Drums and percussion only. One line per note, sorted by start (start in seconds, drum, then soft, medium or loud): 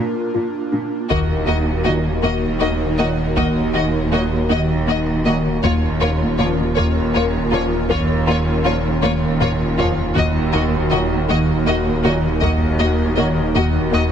1.10 taiko medium
3.36 taiko medium
5.63 taiko medium
7.90 taiko medium
9.03 taiko high medium
9.41 taiko low-mid medium
9.78 taiko low medium
10.16 taiko medium
12.42 taiko medium